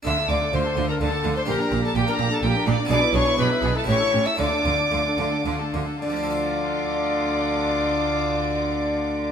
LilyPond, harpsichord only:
<<
  \new Staff \with { instrumentName = "Harpsichord" } { \time 3/4 \key d \minor \tempo 4 = 116 <d' a'>2. | <d' g'>2. | <b e' gis'>2 <e' a'>4 | <d' a'>2. |
<d f d' a' d''>2.~ | <d f d' a' d''>2. | }
  \new Staff \with { instrumentName = "Harpsichord" } { \clef bass \time 3/4 \key d \minor d8 d8 d8 d8 d8 d8 | bes,8 bes,8 bes,8 bes,8 bes,8 bes,8 | b,8 b,8 b,8 b,8 a,8 a,8 | d8 d8 d8 d8 d8 d8 |
r2. | r2. | }
>>